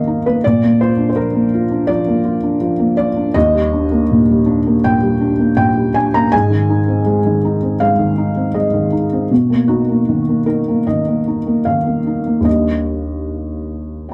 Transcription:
0.00 0.45 D#3 soft
0.00 0.27 A#3 soft
0.00 0.07 D#4 soft
0.00 0.44 A#4 medium
0.00 0.24 D#5 medium
0.00 0.44 F5 medium
0.07 0.36 D#4 soft
0.26 0.44 A#3 soft
0.26 0.43 B4 medium
0.44 1.87 A#2 medium
0.44 0.80 D5 medium
0.63 0.91 A#3 soft
0.81 1.09 F4 soft
0.81 1.08 C5 medium
0.98 1.27 D4 soft
1.09 1.16 C5 medium
1.16 1.45 F3 soft
1.16 1.89 A#4 medium
1.35 1.63 A#3 soft
1.54 1.82 F4 soft
1.71 2.00 D4 soft
1.87 2.18 F3 soft
1.87 2.96 D5 medium
2.08 2.36 A#3 soft
2.25 2.54 F4 soft
2.43 2.73 D4 soft
2.61 2.91 F3 soft
2.79 3.09 A#3 soft
2.97 3.28 F4 soft
2.97 3.35 D5 medium
3.16 3.35 D4 soft
3.34 4.79 D#2 medium
3.34 4.82 D#5 medium
3.54 3.83 G3 soft
3.73 4.02 D4 soft
3.91 4.20 A#3 soft
4.11 4.40 A#2 soft
4.29 4.58 G3 soft
4.46 4.75 D4 soft
4.67 4.95 A#3 soft
4.84 5.14 A#2 soft
4.84 5.55 G5 medium
5.03 5.32 G3 soft
5.21 5.50 D4 soft
5.39 5.69 A#3 soft
5.57 5.87 A#2 soft
5.57 5.95 G5 medium
5.77 6.07 G3 soft
5.94 6.25 D4 soft
5.94 6.13 G#5 medium
6.14 6.33 A#3 soft
6.14 6.33 A#5 medium
6.32 7.76 G#2 medium
6.32 7.80 G#5 medium
6.50 6.80 D#3 soft
6.70 6.99 D#4 soft
6.88 7.17 C4 soft
7.06 7.35 G#3 soft
7.26 7.55 D#3 soft
7.45 7.73 D#4 soft
7.62 7.92 C4 soft
7.80 8.10 G#3 soft
7.80 8.55 F5 medium
7.99 8.29 D#3 soft
8.18 8.47 D#4 soft
8.36 8.66 C4 soft
8.54 8.85 G#3 soft
8.54 8.92 D#5 medium
8.74 9.04 D#3 soft
8.92 9.23 D#4 soft
9.13 9.31 C4 soft
9.31 10.84 B2 medium
9.50 9.80 A#3 soft
9.68 9.99 D#4 soft
9.68 10.46 F#4 medium
9.89 10.19 A#3 soft
10.09 10.39 D#3 soft
10.29 10.60 A#3 soft
10.46 10.80 D#4 soft
10.46 10.87 A#4 medium
10.68 11.00 A#3 soft
10.87 11.19 D#3 soft
10.87 11.66 D#5 medium
11.08 11.39 A#3 soft
11.28 11.58 D#4 soft
11.47 11.78 A#3 soft
11.65 11.98 D#3 soft
11.65 12.45 F5 medium
11.87 12.18 A#3 soft
12.07 12.38 D#4 soft
12.26 12.41 A#3 soft
12.40 14.14 D#2 soft
12.40 14.14 G3 soft
12.40 14.14 A#3 soft
12.44 14.14 D4 soft
12.44 14.14 D#5 medium
14.09 14.14 G5 soft

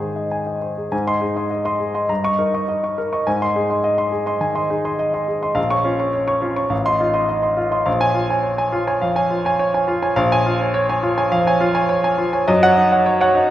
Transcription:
0.00 0.92 G#2 medium
0.00 0.95 D#3 soft
0.00 0.77 G#4 soft
0.00 0.61 C5 soft
0.00 0.16 D#5 soft
0.00 0.31 G#5 medium
0.16 0.40 D#5 soft
0.31 0.56 G#5 soft
0.47 0.71 D#5 soft
0.61 0.86 C5 soft
0.77 0.92 G#4 soft
0.92 2.06 G#2 medium
0.92 1.16 G#5 medium
1.07 1.20 D#5 soft
1.07 1.21 C6 medium
1.21 1.45 D#4 soft
1.21 1.45 G#4 soft
1.36 1.49 D#5 soft
1.36 1.50 C6 soft
1.51 1.64 D#5 soft
1.65 1.79 D#5 medium
1.65 1.79 C6 medium
1.80 2.03 G#4 soft
1.95 2.08 D#5 medium
1.95 2.08 C6 soft
2.09 3.22 G2 medium
2.09 2.33 A#5 medium
2.24 2.37 D#5 soft
2.24 2.37 C#6 medium
2.38 2.62 D#4 medium
2.38 2.62 A#4 medium
2.54 2.67 D#5 medium
2.54 2.67 C#6 soft
2.68 2.82 D#5 medium
2.83 2.96 D#5 soft
2.83 2.96 C#6 soft
2.98 3.21 A#4 medium
3.13 3.25 D#5 soft
3.13 3.25 C#6 medium
3.27 4.39 G#2 medium
3.27 3.50 G#5 medium
3.42 3.54 D#5 soft
3.42 3.54 C6 medium
3.56 3.79 D#4 medium
3.56 3.79 G#4 medium
3.70 3.82 D#5 soft
3.70 3.83 C6 soft
3.84 3.97 D#5 medium
3.98 4.11 D#5 soft
3.98 4.11 C6 medium
4.12 4.35 G#4 medium
4.26 4.40 D#5 medium
4.26 4.40 C6 medium
4.41 4.64 D#3 soft
4.41 4.64 G#5 medium
4.55 4.68 D#5 medium
4.55 4.69 C6 medium
4.70 4.93 D#4 medium
4.70 4.93 G#4 medium
4.85 4.98 D#5 medium
4.85 4.98 C6 medium
4.99 5.12 D#5 medium
5.14 5.27 D#5 soft
5.14 5.27 C6 soft
5.28 5.51 G#4 medium
5.42 5.56 D#5 medium
5.42 5.56 C6 medium
5.55 6.67 A#1 medium
5.55 5.79 F5 medium
5.70 5.84 C#5 medium
5.70 5.84 C#6 medium
5.84 6.08 C#4 medium
5.84 6.08 F4 medium
5.99 6.11 C#5 soft
5.99 6.13 C#6 soft
6.13 6.26 C#5 medium
6.28 6.41 C#5 medium
6.28 6.41 C#6 medium
6.41 6.65 C#4 medium
6.41 6.65 F4 medium
6.56 6.70 C#5 medium
6.56 6.70 C#6 medium
6.70 7.82 A1 medium
6.70 6.94 F5 medium
6.85 6.99 D#5 medium
6.85 6.99 C6 medium
7.00 7.23 D#4 medium
7.00 7.23 F4 medium
7.14 7.27 D#5 medium
7.14 7.27 C6 medium
7.29 7.41 D#5 medium
7.42 7.56 D#5 soft
7.42 7.56 C6 soft
7.57 7.80 F4 medium
7.71 7.85 D#5 medium
7.71 7.85 C6 medium
7.86 8.99 A#1 medium
7.86 8.09 F5 medium
8.00 8.14 C#5 medium
8.00 8.14 G#5 medium
8.14 8.38 F4 medium
8.30 8.42 C#5 medium
8.30 8.43 G#5 medium
8.43 8.56 C#5 medium
8.58 8.71 C#5 medium
8.58 8.72 G#5 medium
8.72 8.96 F4 medium
8.87 9.01 C#5 medium
8.87 9.01 G#5 medium
9.01 9.25 F2 medium
9.01 9.25 F5 medium
9.15 9.29 C#5 medium
9.15 9.29 G#5 medium
9.30 9.54 F4 medium
9.45 9.58 C#5 medium
9.45 9.59 G#5 medium
9.59 9.73 C#5 medium
9.74 9.87 C#5 medium
9.74 9.87 G#5 medium
9.88 10.11 F4 medium
10.02 10.16 C#5 medium
10.02 10.16 G#5 medium
10.16 11.29 A#1 medium
10.16 10.40 F5 medium
10.32 10.45 C#5 medium
10.32 10.45 G#5 medium
10.46 10.69 F4 medium
10.61 10.73 C#5 medium
10.61 10.74 G#5 medium
10.74 10.88 C#5 medium
10.89 11.02 C#5 medium
10.89 11.02 G#5 medium
11.03 11.27 F4 medium
11.18 11.31 C#5 medium
11.18 11.31 G#5 medium
11.32 11.56 F2 medium
11.32 11.56 F5 medium
11.47 11.60 C#5 medium
11.47 11.60 G#5 medium
11.61 11.84 F4 medium
11.74 11.87 C#5 medium
11.74 11.88 G#5 medium
11.89 12.02 C#5 medium
12.04 12.18 C#5 medium
12.04 12.18 G#5 medium
12.18 12.42 F4 medium
12.33 12.47 C#5 medium
12.33 12.47 G#5 medium
12.48 13.50 F#2 medium
12.48 12.72 D#5 medium
12.63 12.76 C#5 medium
12.63 12.76 F#5 loud
12.77 13.01 D#4 medium
12.92 13.05 C#5 medium
12.92 13.05 F#5 medium
13.06 13.19 C#5 medium
13.21 13.34 C#5 medium
13.21 13.35 F#5 medium
13.35 13.50 D#4 medium

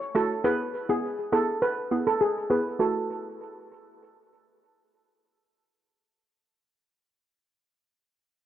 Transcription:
0.15 0.34 A3 medium
0.15 0.34 E4 medium
0.15 0.34 F#4 medium
0.15 0.25 A4 medium
0.44 0.63 B3 medium
0.44 0.63 E4 medium
0.44 0.63 G#4 loud
0.44 0.54 B4 medium
0.89 1.07 B3 medium
0.89 1.07 E4 medium
0.89 0.98 G#4 medium
0.89 1.07 G#4 medium
1.32 1.51 B3 medium
1.32 1.51 E4 medium
1.32 1.52 G#4 medium
1.32 1.43 A4 medium
1.62 1.72 B4 medium
1.91 2.10 B3 medium
1.91 2.10 E4 medium
1.91 2.10 G#4 medium
2.07 2.16 A4 medium
2.21 2.31 G#4 medium
2.50 2.77 B3 medium
2.50 2.77 E4 medium
2.50 2.78 G#4 medium
2.50 2.60 B4 medium
2.79 6.61 A3 medium
2.79 6.61 E4 medium
2.79 6.61 F#4 medium
2.79 4.52 A4 medium

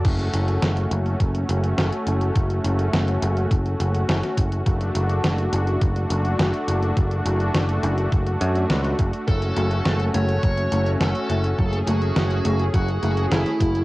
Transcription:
0.05 0.28 F#1 medium
0.05 4.62 A3 medium
0.05 4.62 C#4 medium
0.05 11.55 F#4 medium
0.05 kick loud
0.05 closed hi-hat medium
0.05 crash medium
0.19 closed hi-hat soft
0.33 0.57 F#1 medium
0.33 closed hi-hat medium
0.48 closed hi-hat soft
0.62 0.85 F#1 medium
0.62 snare loud
0.62 closed hi-hat medium
0.77 closed hi-hat soft
0.91 1.14 F#1 loud
0.91 closed hi-hat medium
1.06 closed hi-hat soft
1.20 1.43 F#1 medium
1.20 kick loud
1.20 closed hi-hat medium
1.35 closed hi-hat soft
1.49 1.72 F#1 loud
1.49 closed hi-hat medium
1.64 closed hi-hat soft
1.78 1.89 F#1 loud
1.78 snare loud
1.78 closed hi-hat medium
1.92 closed hi-hat soft
2.07 2.30 F#1 medium
2.07 closed hi-hat medium
2.21 closed hi-hat soft
2.35 2.59 F#1 medium
2.35 kick loud
2.35 closed hi-hat medium
2.50 closed hi-hat soft
2.64 2.87 F#1 loud
2.64 closed hi-hat medium
2.79 closed hi-hat soft
2.93 3.16 F#1 medium
2.93 snare loud
2.93 closed hi-hat medium
3.08 closed hi-hat soft
3.22 3.45 F#1 loud
3.22 closed hi-hat loud
3.37 closed hi-hat soft
3.51 3.74 F#1 medium
3.51 kick loud
3.51 closed hi-hat medium
3.66 closed hi-hat soft
3.80 4.03 F#1 medium
3.80 closed hi-hat medium
3.94 closed hi-hat soft
4.09 4.20 F#1 loud
4.09 snare loud
4.09 closed hi-hat medium
4.23 snare soft
4.23 closed hi-hat soft
4.37 4.60 F#1 medium
4.37 kick loud
4.37 closed hi-hat medium
4.52 closed hi-hat soft
4.66 4.89 F#1 medium
4.66 13.84 A3 medium
4.66 9.24 D4 medium
4.66 kick loud
4.66 closed hi-hat medium
4.81 closed hi-hat soft
4.95 5.18 F#1 loud
4.95 closed hi-hat medium
5.10 closed hi-hat soft
5.24 5.47 F#1 medium
5.24 snare loud
5.24 closed hi-hat medium
5.38 closed hi-hat soft
5.53 5.76 F#1 loud
5.53 closed hi-hat medium
5.67 closed hi-hat soft
5.81 6.05 F#1 medium
5.81 kick loud
5.81 closed hi-hat medium
5.96 closed hi-hat soft
6.10 6.33 F#1 medium
6.10 closed hi-hat medium
6.25 closed hi-hat soft
6.39 6.51 F#1 loud
6.39 snare loud
6.39 closed hi-hat medium
6.54 closed hi-hat soft
6.68 6.91 F#1 medium
6.68 closed hi-hat medium
6.83 closed hi-hat soft
6.97 7.20 F#1 medium
6.97 kick loud
6.97 closed hi-hat medium
7.11 closed hi-hat soft
7.25 7.49 F#1 medium
7.25 closed hi-hat medium
7.40 closed hi-hat soft
7.54 7.78 F#1 medium
7.54 snare loud
7.54 closed hi-hat medium
7.69 closed hi-hat soft
7.83 8.06 F#1 loud
7.83 closed hi-hat loud
7.98 closed hi-hat soft
8.12 8.35 F#1 medium
8.12 kick loud
8.12 closed hi-hat medium
8.27 closed hi-hat soft
8.41 8.64 F#2 loud
8.41 closed hi-hat medium
8.56 closed hi-hat soft
8.70 8.93 C#2 medium
8.70 snare loud
8.70 closed hi-hat medium
8.84 snare soft
8.84 closed hi-hat soft
8.99 9.10 F#1 loud
8.99 kick loud
8.99 closed hi-hat medium
9.13 closed hi-hat soft
9.28 9.51 F#1 medium
9.28 9.55 F#3 medium
9.28 13.84 C#4 medium
9.28 10.03 A4 medium
9.28 kick loud
9.28 closed hi-hat medium
9.42 closed hi-hat soft
9.56 9.80 F#1 loud
9.56 9.75 A3 loud
9.56 closed hi-hat medium
9.71 closed hi-hat soft
9.85 10.08 F#1 medium
9.85 10.13 C#4 medium
9.85 snare loud
9.85 closed hi-hat medium
10.00 closed hi-hat soft
10.14 10.37 F#1 loud
10.14 10.41 A3 medium
10.14 10.89 C#5 medium
10.14 closed hi-hat medium
10.29 closed hi-hat soft
10.43 10.66 F#1 medium
10.43 10.70 F#3 medium
10.43 kick loud
10.43 closed hi-hat medium
10.58 closed hi-hat soft
10.72 10.95 F#1 loud
10.72 10.83 A3 medium
10.72 closed hi-hat medium
10.86 closed hi-hat soft
11.01 11.12 F#1 loud
11.01 11.19 C#4 medium
11.01 11.76 A4 loud
11.01 snare loud
11.01 closed hi-hat medium
11.15 closed hi-hat soft
11.30 11.53 F#1 medium
11.30 11.48 A3 medium
11.30 closed hi-hat medium
11.44 closed hi-hat soft
11.58 11.82 F#1 medium
11.58 11.86 F#3 medium
11.58 13.84 G#4 medium
11.58 kick loud
11.58 closed hi-hat medium
11.73 closed hi-hat soft
11.87 12.10 F#1 medium
11.87 12.06 A3 loud
11.87 12.63 F#4 loud
11.87 closed hi-hat medium
12.02 closed hi-hat soft
12.16 12.39 F#1 medium
12.16 12.44 C#4 medium
12.16 snare loud
12.16 closed hi-hat medium
12.31 closed hi-hat soft
12.45 12.68 F#1 loud
12.45 12.72 A3 medium
12.45 closed hi-hat medium
12.60 closed hi-hat soft
12.74 12.97 F#1 medium
12.74 13.01 F#3 medium
12.74 13.24 F#4 medium
12.74 kick loud
12.74 closed hi-hat medium
12.88 closed hi-hat soft
13.03 13.26 F#1 loud
13.03 13.14 A3 medium
13.03 closed hi-hat medium
13.17 closed hi-hat soft
13.31 13.43 F#1 loud
13.31 13.50 C#4 medium
13.31 13.82 E4 medium
13.31 snare loud
13.31 closed hi-hat medium
13.46 snare soft
13.46 closed hi-hat soft
13.60 13.84 F#1 medium
13.60 13.79 A3 medium
13.60 kick loud
13.60 closed hi-hat medium
13.75 closed hi-hat soft

